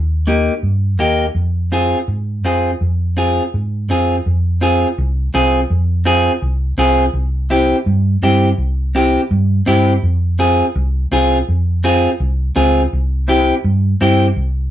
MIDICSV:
0, 0, Header, 1, 3, 480
1, 0, Start_track
1, 0, Key_signature, -4, "minor"
1, 0, Tempo, 361664
1, 1800, Time_signature, 4, 2, 24, 8
1, 5647, Key_signature, -4, "minor"
1, 19518, End_track
2, 0, Start_track
2, 0, Title_t, "Clean electric guitar"
2, 0, Program_c, 0, 27
2, 359, Note_on_c, 0, 58, 73
2, 365, Note_on_c, 0, 63, 69
2, 372, Note_on_c, 0, 67, 70
2, 694, Note_off_c, 0, 58, 0
2, 698, Note_off_c, 0, 63, 0
2, 699, Note_off_c, 0, 67, 0
2, 1314, Note_on_c, 0, 58, 77
2, 1323, Note_on_c, 0, 63, 54
2, 1326, Note_on_c, 0, 67, 84
2, 1654, Note_off_c, 0, 58, 0
2, 1655, Note_off_c, 0, 63, 0
2, 1659, Note_off_c, 0, 67, 0
2, 2281, Note_on_c, 0, 60, 72
2, 2288, Note_on_c, 0, 65, 65
2, 2299, Note_on_c, 0, 68, 85
2, 2618, Note_off_c, 0, 60, 0
2, 2621, Note_off_c, 0, 65, 0
2, 2627, Note_off_c, 0, 68, 0
2, 3247, Note_on_c, 0, 60, 70
2, 3255, Note_on_c, 0, 65, 69
2, 3261, Note_on_c, 0, 68, 66
2, 3582, Note_off_c, 0, 60, 0
2, 3587, Note_off_c, 0, 65, 0
2, 3588, Note_off_c, 0, 68, 0
2, 4204, Note_on_c, 0, 60, 75
2, 4214, Note_on_c, 0, 65, 64
2, 4220, Note_on_c, 0, 68, 76
2, 4544, Note_off_c, 0, 60, 0
2, 4545, Note_off_c, 0, 65, 0
2, 4545, Note_off_c, 0, 68, 0
2, 5175, Note_on_c, 0, 60, 75
2, 5187, Note_on_c, 0, 65, 58
2, 5187, Note_on_c, 0, 68, 76
2, 5509, Note_off_c, 0, 60, 0
2, 5510, Note_off_c, 0, 65, 0
2, 5513, Note_off_c, 0, 68, 0
2, 6123, Note_on_c, 0, 60, 78
2, 6132, Note_on_c, 0, 65, 77
2, 6141, Note_on_c, 0, 68, 83
2, 6461, Note_off_c, 0, 60, 0
2, 6466, Note_off_c, 0, 65, 0
2, 6468, Note_off_c, 0, 68, 0
2, 7088, Note_on_c, 0, 60, 79
2, 7096, Note_on_c, 0, 65, 61
2, 7096, Note_on_c, 0, 68, 96
2, 7424, Note_off_c, 0, 60, 0
2, 7425, Note_off_c, 0, 65, 0
2, 7427, Note_off_c, 0, 68, 0
2, 8036, Note_on_c, 0, 60, 83
2, 8041, Note_on_c, 0, 65, 75
2, 8050, Note_on_c, 0, 68, 99
2, 8376, Note_off_c, 0, 60, 0
2, 8377, Note_off_c, 0, 65, 0
2, 8383, Note_off_c, 0, 68, 0
2, 8996, Note_on_c, 0, 60, 94
2, 9007, Note_on_c, 0, 65, 65
2, 9013, Note_on_c, 0, 68, 100
2, 9336, Note_off_c, 0, 60, 0
2, 9337, Note_off_c, 0, 65, 0
2, 9344, Note_off_c, 0, 68, 0
2, 9957, Note_on_c, 0, 64, 76
2, 9962, Note_on_c, 0, 60, 86
2, 9971, Note_on_c, 0, 67, 93
2, 10295, Note_off_c, 0, 64, 0
2, 10298, Note_off_c, 0, 60, 0
2, 10302, Note_off_c, 0, 67, 0
2, 10921, Note_on_c, 0, 60, 84
2, 10929, Note_on_c, 0, 64, 60
2, 10929, Note_on_c, 0, 67, 84
2, 11257, Note_off_c, 0, 60, 0
2, 11258, Note_off_c, 0, 64, 0
2, 11260, Note_off_c, 0, 67, 0
2, 11877, Note_on_c, 0, 60, 82
2, 11887, Note_on_c, 0, 64, 65
2, 11890, Note_on_c, 0, 67, 87
2, 12214, Note_off_c, 0, 60, 0
2, 12216, Note_off_c, 0, 64, 0
2, 12220, Note_off_c, 0, 67, 0
2, 12825, Note_on_c, 0, 60, 91
2, 12837, Note_on_c, 0, 64, 76
2, 12843, Note_on_c, 0, 67, 88
2, 13167, Note_off_c, 0, 60, 0
2, 13173, Note_off_c, 0, 64, 0
2, 13176, Note_off_c, 0, 67, 0
2, 13789, Note_on_c, 0, 60, 80
2, 13797, Note_on_c, 0, 65, 61
2, 13799, Note_on_c, 0, 68, 96
2, 14129, Note_off_c, 0, 65, 0
2, 14130, Note_off_c, 0, 60, 0
2, 14133, Note_off_c, 0, 68, 0
2, 14754, Note_on_c, 0, 60, 85
2, 14763, Note_on_c, 0, 65, 72
2, 14771, Note_on_c, 0, 68, 87
2, 15092, Note_off_c, 0, 60, 0
2, 15094, Note_off_c, 0, 65, 0
2, 15094, Note_off_c, 0, 68, 0
2, 15715, Note_on_c, 0, 60, 90
2, 15724, Note_on_c, 0, 68, 85
2, 15726, Note_on_c, 0, 65, 77
2, 16051, Note_off_c, 0, 60, 0
2, 16053, Note_off_c, 0, 65, 0
2, 16054, Note_off_c, 0, 68, 0
2, 16666, Note_on_c, 0, 60, 85
2, 16671, Note_on_c, 0, 65, 66
2, 16673, Note_on_c, 0, 68, 90
2, 17005, Note_off_c, 0, 65, 0
2, 17006, Note_off_c, 0, 60, 0
2, 17008, Note_off_c, 0, 68, 0
2, 17625, Note_on_c, 0, 60, 78
2, 17633, Note_on_c, 0, 64, 76
2, 17642, Note_on_c, 0, 67, 98
2, 17964, Note_off_c, 0, 60, 0
2, 17968, Note_off_c, 0, 64, 0
2, 17973, Note_off_c, 0, 67, 0
2, 18592, Note_on_c, 0, 60, 84
2, 18600, Note_on_c, 0, 64, 79
2, 18605, Note_on_c, 0, 67, 79
2, 18929, Note_off_c, 0, 60, 0
2, 18930, Note_off_c, 0, 64, 0
2, 18930, Note_off_c, 0, 67, 0
2, 19518, End_track
3, 0, Start_track
3, 0, Title_t, "Fingered electric bass"
3, 0, Program_c, 1, 33
3, 0, Note_on_c, 1, 39, 83
3, 638, Note_off_c, 1, 39, 0
3, 835, Note_on_c, 1, 43, 85
3, 1311, Note_off_c, 1, 43, 0
3, 1311, Note_on_c, 1, 39, 87
3, 1699, Note_off_c, 1, 39, 0
3, 1788, Note_on_c, 1, 41, 82
3, 2563, Note_off_c, 1, 41, 0
3, 2759, Note_on_c, 1, 44, 85
3, 3239, Note_off_c, 1, 44, 0
3, 3239, Note_on_c, 1, 41, 98
3, 3626, Note_off_c, 1, 41, 0
3, 3728, Note_on_c, 1, 41, 82
3, 4496, Note_off_c, 1, 41, 0
3, 4698, Note_on_c, 1, 44, 94
3, 5186, Note_off_c, 1, 44, 0
3, 5186, Note_on_c, 1, 41, 84
3, 5562, Note_off_c, 1, 41, 0
3, 5655, Note_on_c, 1, 41, 86
3, 6420, Note_off_c, 1, 41, 0
3, 6613, Note_on_c, 1, 36, 110
3, 6994, Note_off_c, 1, 36, 0
3, 7092, Note_on_c, 1, 36, 89
3, 7473, Note_off_c, 1, 36, 0
3, 7568, Note_on_c, 1, 41, 92
3, 8334, Note_off_c, 1, 41, 0
3, 8523, Note_on_c, 1, 36, 98
3, 8907, Note_off_c, 1, 36, 0
3, 8992, Note_on_c, 1, 36, 95
3, 9380, Note_off_c, 1, 36, 0
3, 9470, Note_on_c, 1, 36, 91
3, 10242, Note_off_c, 1, 36, 0
3, 10435, Note_on_c, 1, 43, 109
3, 10821, Note_off_c, 1, 43, 0
3, 10913, Note_on_c, 1, 43, 90
3, 11300, Note_off_c, 1, 43, 0
3, 11387, Note_on_c, 1, 36, 84
3, 12159, Note_off_c, 1, 36, 0
3, 12352, Note_on_c, 1, 43, 116
3, 12738, Note_off_c, 1, 43, 0
3, 12837, Note_on_c, 1, 43, 86
3, 13220, Note_off_c, 1, 43, 0
3, 13308, Note_on_c, 1, 41, 98
3, 14079, Note_off_c, 1, 41, 0
3, 14273, Note_on_c, 1, 36, 114
3, 14658, Note_off_c, 1, 36, 0
3, 14751, Note_on_c, 1, 36, 81
3, 15136, Note_off_c, 1, 36, 0
3, 15242, Note_on_c, 1, 41, 82
3, 16006, Note_off_c, 1, 41, 0
3, 16193, Note_on_c, 1, 36, 112
3, 16576, Note_off_c, 1, 36, 0
3, 16669, Note_on_c, 1, 37, 100
3, 17054, Note_off_c, 1, 37, 0
3, 17160, Note_on_c, 1, 36, 92
3, 17924, Note_off_c, 1, 36, 0
3, 18108, Note_on_c, 1, 43, 113
3, 18493, Note_off_c, 1, 43, 0
3, 18594, Note_on_c, 1, 43, 90
3, 18977, Note_off_c, 1, 43, 0
3, 19060, Note_on_c, 1, 36, 94
3, 19518, Note_off_c, 1, 36, 0
3, 19518, End_track
0, 0, End_of_file